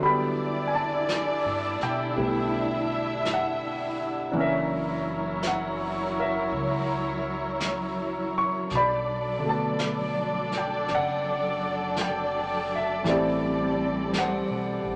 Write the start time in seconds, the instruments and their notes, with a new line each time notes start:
Already playing: grand piano D3
0.00 upright bass E2, grand piano F#3 B5, string section D4 E4 D5, brush sweep
0.04 grand piano G3 B3 G5
0.68 grand piano G#5
0.75 grand piano A5
1.09 brush sweep, snare, hi-hat pedal
1.45 upright bass G2
1.80 upright bass B2, grand piano G5, snare
2.16 upright bass B1, grand piano G3 A3 B3, string section E5, brush sweep
3.25 brush sweep, snare, hi-hat pedal
3.34 grand piano F#5
4.32 upright bass F#1, grand piano E3 A#3 D4, string section F#3 E4 A#4 C#5, brush sweep
4.37 grand piano C#4 A#4
4.41 grand piano E5
5.43 brush sweep, snare, hi-hat pedal
5.47 grand piano F#5
6.20 grand piano A#4 E5
6.51 upright bass C#2, brush sweep
7.60 brush sweep, snare, hi-hat pedal
8.38 grand piano C#6
8.67 upright bass B1, string section D4 A4 D5, brush sweep, snare
8.75 grand piano D5 B5
9.39 grand piano D3 F#3
9.46 grand piano A3 B3 A5
9.79 brush sweep, snare, hi-hat pedal
10.52 snare
10.58 grand piano G5
10.88 upright bass F#1, brush sweep, snare
10.95 grand piano D5 F#5
11.96 brush sweep, snare, hi-hat pedal
12.01 grand piano G5
12.75 grand piano E5
13.04 upright bass A1, grand piano E3 G3 A3, string section G3 C4, brush sweep, snare
13.08 grand piano C4 G4 D5
14.13 brush sweep, snare, hi-hat pedal
14.18 grand piano C5 F#5
14.48 upright bass B1
14.84 upright bass A1